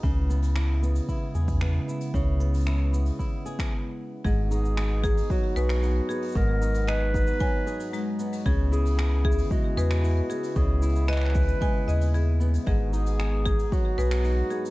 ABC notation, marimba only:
X:1
M:4/4
L:1/8
Q:1/4=114
K:G#m
V:1 name="Marimba"
z8 | z8 | G z2 G z B z G | z2 d z g z G, z |
G z2 G z B z G | z2 d z g d G z | G z2 G z B z G |]